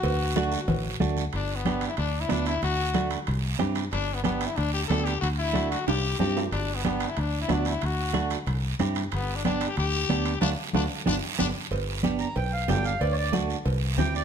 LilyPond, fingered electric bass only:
\new Staff \with { instrumentName = "Fingered electric bass" } { \clef bass \time 4/4 \key g \major \tempo 4 = 185 d,2 a,,4 d,4 | g,,2 d,4 d,4 | d,2 c,4 g,4 | g,,2 d,4 d,4 |
d,2 c,4 g,4 | g,,2 d,4 d,4 | d,2 c,4 g,4 | g,,2 d,4 d,4 |
d,8 r8 d,8 r8 g,,8 r8 g,,8 r8 | g,,2 b,,4 g,,4 | d,2 c,4 d,4 | }